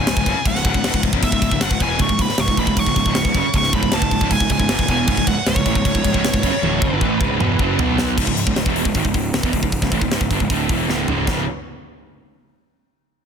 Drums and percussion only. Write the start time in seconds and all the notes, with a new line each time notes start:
0.07 snare, crash
0.17 kick
0.26 kick, crash
0.45 kick, crash
0.55 snare
0.65 kick, crash
0.74 kick
0.84 snare, crash
0.94 kick
1.03 kick, crash
1.13 kick
1.23 kick, crash
1.32 kick
1.42 kick, crash
1.51 kick
1.61 snare, crash
1.71 kick
1.80 kick, crash
1.99 kick, crash
2.09 kick
2.19 kick, crash
2.29 snare
2.38 snare, crash
2.48 kick
2.57 kick, crash
2.67 kick
2.77 kick, crash
2.87 kick
2.96 kick, crash
3.06 kick
3.15 snare, crash
3.25 kick
3.34 kick, crash
3.53 kick, crash
3.63 snare
3.73 kick, crash
3.83 kick
3.92 snare, crash
4.02 kick
4.11 kick, crash
4.21 kick
4.31 kick, crash
4.40 kick
4.49 kick, crash
4.60 kick
4.69 snare, crash
4.79 kick
4.88 kick, crash
5.07 kick, crash
5.17 kick
5.27 kick, crash
5.46 snare, crash
5.56 kick
5.66 kick, crash
5.75 kick
5.85 kick, crash
5.95 kick
6.05 kick, crash
6.14 kick
6.24 snare, crash
6.34 kick
6.43 kick, crash
6.63 high tom
6.82 kick
7.01 kick
7.21 kick
7.40 mid tom
7.59 kick
7.79 floor tom
7.98 snare
8.18 kick, crash
8.27 kick
8.37 open hi-hat
8.47 kick
8.56 snare, open hi-hat
8.66 kick
8.76 open hi-hat
8.85 kick
8.94 kick, open hi-hat
9.05 kick
9.14 kick, open hi-hat
9.34 snare, open hi-hat
9.43 kick
9.53 kick, open hi-hat
9.63 kick
9.72 kick, open hi-hat
9.82 kick, snare
9.92 kick, open hi-hat
10.01 kick
10.11 snare, open hi-hat
10.21 kick
10.31 kick, open hi-hat
10.40 kick
10.50 kick, open hi-hat
10.69 kick, open hi-hat
10.90 snare
11.08 floor tom
11.27 kick, snare, splash